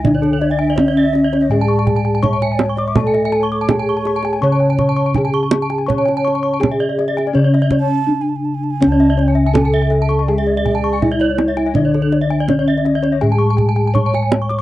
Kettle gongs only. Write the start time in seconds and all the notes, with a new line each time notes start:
Already playing: C#2
0.04 D4
0.78 D4
1.50 A2
2.23 D4
2.96 A4
3.69 D4
4.42 C#3
5.15 D4
5.88 C#5
6.62 D4
7.35 C#3
8.09 D4
8.82 C#4
8.86 C#2
9.55 D4
11.02 D4
11.76 D4
12.48 D4
13.23 A2
13.95 D4